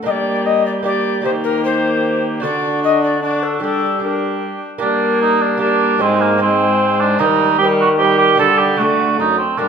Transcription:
0.03 trombone G3, lute G3 A#3 D4 G4, viola A#3, cor anglais G4, recorder D#5
0.10 recorder D5
0.46 recorder D#5
0.66 recorder D5
0.83 lute A#3 D4 G4, viola A#3, cor anglais G4, recorder D5
1.22 trombone D#3, lute D#3 A#3 D#4 G4, viola A#3, cor anglais G4, recorder C5
1.44 recorder A#4
1.65 recorder C5
2.40 trombone D3, lute D3 D4 F#4 A4, viola D4, cor anglais F#4
2.44 recorder D5
2.83 recorder D#5
3.03 recorder D5
3.23 viola D4, cor anglais F#4, recorder D5
3.43 recorder A4
3.60 trombone G3, lute G3 D4 G4, viola D4, cor anglais G4, recorder A4
3.99 lute D4 G4, cor anglais G4
4.04 viola D4, recorder A#4
4.78 lute G3 A#3 G4, viola A#3, cor anglais D4, recorder A#4
4.83 trombone G3
5.21 cor anglais D#4
5.41 cor anglais D4
5.57 lute A#3 G4, viola A#3, cor anglais D4, recorder A#4
5.98 trombone G#2, lute G#3 C4 D#4, viola G#3, cor anglais C4, recorder C5
6.02 lute G#2
6.21 cor anglais A#3
6.37 lute G#3 C4 D#4, cor anglais C4
6.42 viola G#3, recorder C5
7.00 cor anglais D4
7.19 trombone D#3, lute D#3 A#3 D#4, viola G3, cor anglais D#4, recorder C5
7.26 recorder A#4
7.58 viola G3, cor anglais G4, recorder C5
7.65 recorder A#4
7.81 cor anglais F#4
7.98 viola G3, cor anglais G4, recorder C5
8.03 recorder A#4
8.18 cor anglais G4
8.35 lute D3 A3 D4 G4, cor anglais A4, recorder D5
8.39 trombone D3, viola G3
8.57 cor anglais G4
8.76 trombone D3, lute A3 D4, viola A3, cor anglais F#4, recorder D5
8.81 lute D3
9.19 lute F#2, trombone F#2, cor anglais D#4
9.38 cor anglais C4
9.57 lute G2 A#3 D4, trombone G2, viola G3, cor anglais D4, recorder A#4

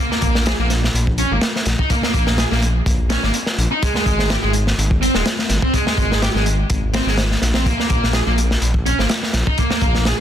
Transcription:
0.11 distorted electric guitar A#3, snare
0.22 detuned saw bass A#1, distorted electric guitar A#3, kick, closed hi-hat
0.35 snare
0.46 distorted electric guitar G#4, snare, closed hi-hat
0.59 detuned saw bass A#1, distorted electric guitar A#3
0.70 snare, closed hi-hat
0.84 snare
0.94 detuned saw bass A#1, closed hi-hat
1.07 kick
1.18 distorted electric guitar C#4, closed hi-hat
1.31 detuned saw bass G#1, distorted electric guitar A#3
1.41 snare, closed hi-hat
1.56 snare
1.66 detuned saw bass A#1, snare, closed hi-hat
1.79 distorted electric guitar D#4, kick
1.90 distorted electric guitar A#3, kick, closed hi-hat
2.03 distorted electric guitar A#3, snare
2.14 detuned saw bass A#1, distorted electric guitar A#3, kick, closed hi-hat
2.27 snare
2.38 distorted electric guitar G#4, snare, closed hi-hat
2.51 detuned saw bass A#1, distorted electric guitar A#3, snare
2.62 closed hi-hat
2.86 detuned saw bass A#1, kick, closed hi-hat
3.10 distorted electric guitar C#4, snare, closed hi-hat
3.23 detuned saw bass G#1, distorted electric guitar A#3, snare
3.34 closed hi-hat
3.46 snare
3.58 detuned saw bass A#1, closed hi-hat
3.71 distorted electric guitar D#4
3.83 distorted electric guitar G#3, kick, closed hi-hat
3.95 distorted electric guitar G#3, snare
4.06 detuned saw bass G#1, distorted electric guitar G#3, kick, closed hi-hat
4.19 snare
4.30 distorted electric guitar G4, snare, closed hi-hat
4.43 detuned saw bass G#1, distorted electric guitar G#3
4.53 closed hi-hat
4.67 snare
4.78 detuned saw bass G#1, closed hi-hat
4.91 kick
5.02 distorted electric guitar C4, closed hi-hat
5.15 detuned saw bass D#1, distorted electric guitar G#3, snare
5.26 snare, closed hi-hat
5.39 snare
5.50 detuned saw bass G#1, snare, closed hi-hat
5.62 distorted electric guitar C4, kick
5.74 distorted electric guitar G#3, kick, closed hi-hat
5.87 distorted electric guitar G#3, snare
5.98 detuned saw bass G#1, distorted electric guitar G#3, kick, closed hi-hat
6.12 snare
6.22 distorted electric guitar G4, snare, closed hi-hat
6.34 detuned saw bass G#1, distorted electric guitar G#3, snare
6.46 closed hi-hat
6.70 detuned saw bass G#1, kick, closed hi-hat
6.94 distorted electric guitar C4, snare, closed hi-hat
7.06 detuned saw bass G#1, distorted electric guitar G#3, snare
7.18 snare, closed hi-hat
7.31 snare
7.42 detuned saw bass A#1, snare, closed hi-hat
7.54 distorted electric guitar C4, snare, closed hi-hat
7.66 distorted electric guitar A#3, kick, closed hi-hat
7.79 distorted electric guitar A#3, snare
7.90 detuned saw bass A#1, distorted electric guitar A#3, kick, closed hi-hat
8.04 snare
8.13 distorted electric guitar G#4, snare, closed hi-hat
8.27 detuned saw bass A#1, distorted electric guitar A#3
8.38 closed hi-hat
8.51 snare
8.61 detuned saw bass A#1, closed hi-hat
8.74 kick
8.86 distorted electric guitar C#4, closed hi-hat
8.98 detuned saw bass G#1, distorted electric guitar A#3, snare
9.09 snare, closed hi-hat
9.23 snare
9.33 detuned saw bass A#1, snare, closed hi-hat
9.47 distorted electric guitar D#4, kick
9.58 distorted electric guitar A#3, kick, closed hi-hat
9.71 distorted electric guitar A#3, snare
9.81 detuned saw bass A#1, distorted electric guitar A#3, kick, closed hi-hat
9.95 snare
10.05 distorted electric guitar G#4, snare, closed hi-hat

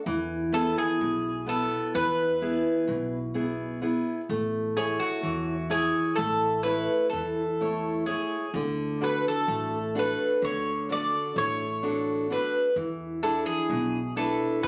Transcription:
0.06 upright bass E2, steel-string acoustic guitar E3
0.52 steel-string acoustic guitar B3 E4 G#4, bouzouki A4
0.78 bouzouki G#4
1.01 upright bass B1, steel-string acoustic guitar B2
1.46 steel-string acoustic guitar B3 E4 B4, bouzouki A4
1.94 upright bass E2, steel-string acoustic guitar E3, bouzouki B4
2.41 steel-string acoustic guitar B3 E4 G#4
2.88 upright bass B1, steel-string acoustic guitar B2
3.34 steel-string acoustic guitar B3 E4 G#4
3.82 steel-string acoustic guitar B3 E4 G#4
4.29 upright bass A1, steel-string acoustic guitar A3
4.77 steel-string acoustic guitar E4 A4 C#5, bouzouki G#4
5.00 bouzouki F#4
5.23 upright bass E2, steel-string acoustic guitar E3
5.70 steel-string acoustic guitar E4 C#5, bouzouki G#4
6.16 upright bass A1, steel-string acoustic guitar A3, bouzouki A4
6.63 steel-string acoustic guitar E4 A4 C#5, bouzouki B4
7.09 upright bass E2, steel-string acoustic guitar E3, bouzouki A4
7.61 steel-string acoustic guitar A3 E4 C#5
8.06 steel-string acoustic guitar E4 C#5, bouzouki G#4
8.54 upright bass D2, steel-string acoustic guitar D3
9.01 steel-string acoustic guitar D4 F#4 A4, bouzouki B4
9.28 bouzouki A4
9.48 upright bass A1, steel-string acoustic guitar A3
9.95 steel-string acoustic guitar D4 F#4 A4
9.99 bouzouki B4
10.42 upright bass D2, steel-string acoustic guitar D3, bouzouki C#5
10.89 steel-string acoustic guitar D4 F#4 A4, bouzouki D5
11.36 upright bass A1, steel-string acoustic guitar A3, bouzouki C#5
11.83 steel-string acoustic guitar D4 F#4 A4
12.30 steel-string acoustic guitar D4 F#4 A4, bouzouki B4
12.76 upright bass E2, steel-string acoustic guitar E3
13.23 steel-string acoustic guitar D4 E4 G#4, bouzouki A4
13.46 bouzouki G#4
13.69 upright bass B1, steel-string acoustic guitar B2
14.16 steel-string acoustic guitar D4 E4 B4, bouzouki A4
14.63 upright bass E2, steel-string acoustic guitar E3, bouzouki B4

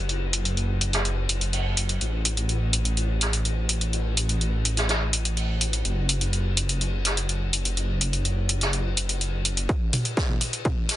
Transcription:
Already playing: detuned saw bass F#1
0.09 closed hi-hat, ride
0.33 closed hi-hat, ride
0.45 closed hi-hat
0.57 closed hi-hat, ride
0.81 closed hi-hat, ride
0.93 snare, closed hi-hat
1.05 closed hi-hat, ride
1.29 closed hi-hat, ride
1.41 closed hi-hat, ride
1.53 closed hi-hat, open hi-hat
1.77 closed hi-hat, ride
1.89 closed hi-hat, ride
2.01 detuned saw bass A1, closed hi-hat, ride
2.25 closed hi-hat, ride
2.37 closed hi-hat
2.49 closed hi-hat, ride
2.73 closed hi-hat, ride
2.85 closed hi-hat
2.97 closed hi-hat, ride
3.21 snare, closed hi-hat, ride
3.33 closed hi-hat
3.45 closed hi-hat, ride
3.69 closed hi-hat, ride
3.81 closed hi-hat
3.93 closed hi-hat, ride
4.17 closed hi-hat, ride
4.29 closed hi-hat
4.41 closed hi-hat, ride
4.65 closed hi-hat, ride
4.77 snare, closed hi-hat
4.89 snare, closed hi-hat, ride
5.13 closed hi-hat, ride
5.25 closed hi-hat
5.37 closed hi-hat, open hi-hat
5.61 closed hi-hat, ride
5.73 closed hi-hat, ride
5.85 detuned saw bass F#1, closed hi-hat, ride
6.09 closed hi-hat, ride
6.21 closed hi-hat
6.33 closed hi-hat, ride
6.56 closed hi-hat, ride
6.69 closed hi-hat
6.81 closed hi-hat, ride
7.05 snare, closed hi-hat, ride
7.17 closed hi-hat
7.29 closed hi-hat, ride
7.53 closed hi-hat, ride
7.65 closed hi-hat
7.77 closed hi-hat, ride
8.01 closed hi-hat, ride
8.13 closed hi-hat
8.25 closed hi-hat, ride
8.49 closed hi-hat, ride
8.61 snare, closed hi-hat
8.73 closed hi-hat, ride
8.97 closed hi-hat, ride
9.09 closed hi-hat, ride
9.21 closed hi-hat, ride
9.45 closed hi-hat, ride
9.57 closed hi-hat
9.69 kick, closed hi-hat
9.93 mid tom, open hi-hat, ride
10.05 closed hi-hat
10.17 kick, snare, closed hi-hat
10.29 mid tom
10.41 open hi-hat, ride
10.53 closed hi-hat
10.65 kick, closed hi-hat, mid tom
10.89 snare, open hi-hat, ride

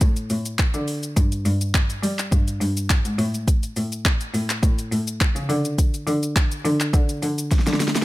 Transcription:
0.01 cello A2, kick, closed hi-hat, shaker
0.16 closed hi-hat, shaker
0.30 cello A2, open hi-hat, shaker
0.45 closed hi-hat, shaker
0.59 kick, clap, closed hi-hat, shaker
0.74 cello D3, closed hi-hat, shaker
0.88 open hi-hat, shaker
1.03 closed hi-hat, shaker
1.17 cello G2, kick, closed hi-hat, shaker
1.32 closed hi-hat, shaker
1.45 cello G2, open hi-hat, shaker
1.61 closed hi-hat, shaker
1.74 kick, clap, closed hi-hat, shaker
1.90 closed hi-hat, shaker
2.03 cello G3, open hi-hat, shaker
2.19 clap, closed hi-hat, shaker
2.32 cello G2, kick, closed hi-hat, shaker
2.48 closed hi-hat, shaker
2.61 cello G2, open hi-hat, shaker
2.77 closed hi-hat, shaker
2.90 kick, clap, closed hi-hat, shaker
3.05 cello G#2, closed hi-hat, shaker
3.19 cello A2, open hi-hat, shaker
3.34 closed hi-hat, shaker
3.48 kick, closed hi-hat, shaker
3.63 closed hi-hat, shaker
3.76 cello A2, open hi-hat, shaker
3.92 closed hi-hat, shaker
4.05 kick, clap, closed hi-hat, shaker
4.21 closed hi-hat, shaker
4.34 cello A2, open hi-hat, shaker
4.50 clap, closed hi-hat, shaker
4.63 cello A2, kick, closed hi-hat, shaker
4.79 closed hi-hat, shaker
4.92 cello A2, open hi-hat, shaker
5.07 closed hi-hat, shaker
5.21 kick, clap, closed hi-hat, shaker
5.36 cello C#3, closed hi-hat, shaker
5.49 cello D3, open hi-hat, shaker
5.65 closed hi-hat, shaker
5.78 kick, closed hi-hat, shaker
5.94 closed hi-hat, shaker
6.07 cello D3, open hi-hat, shaker
6.23 closed hi-hat, shaker
6.36 kick, clap, closed hi-hat, shaker
6.52 closed hi-hat, shaker
6.65 cello D3, open hi-hat, shaker
6.80 clap, closed hi-hat, shaker
6.94 cello D3, kick, closed hi-hat, shaker
7.09 closed hi-hat, shaker
7.23 cello D3, open hi-hat, shaker
7.38 closed hi-hat, shaker
7.51 kick, snare, closed hi-hat, shaker
7.59 snare
7.67 cello D3, snare, closed hi-hat, shaker
7.73 snare
7.80 snare, open hi-hat, shaker
7.88 snare
7.96 snare, closed hi-hat, shaker

